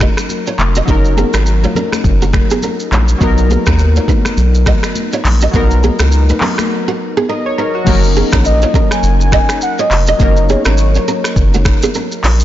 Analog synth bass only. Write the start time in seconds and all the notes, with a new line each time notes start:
0.59 F1
0.88 F#1
1.34 G#1
2.04 F#1
2.92 A#1
3.21 B1
3.67 D#2
4.38 B1
5.25 A#1
5.54 B1
6.00 C#2
7.87 F#1
8.33 A#1
9.03 F#1
9.91 F1
10.20 F#1
10.66 G#1
11.36 F#1
12.24 A#1